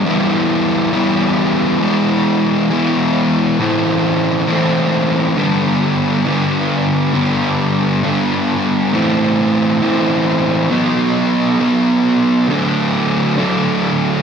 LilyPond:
\new Staff \with { instrumentName = "Distorted electric guitar" } { \clef bass \time 3/4 \key e \minor \tempo 4 = 101 <e g b e'>4. <e g b e'>4. | <e gis b e'>4. <e gis b e'>4. | <a, e a c' e'>4. <a, e a c' e'>4. | <g, d g b d'>4. <g, d g b d'>4. |
<g, d g b d'>4. <g, d g b d'>4. | <a, e a c' e'>4. <a, e a c' e'>4. | <b, fis b dis'>4. <b, fis b dis'>4. | <d fis a d'>4. <d fis a d'>4. | }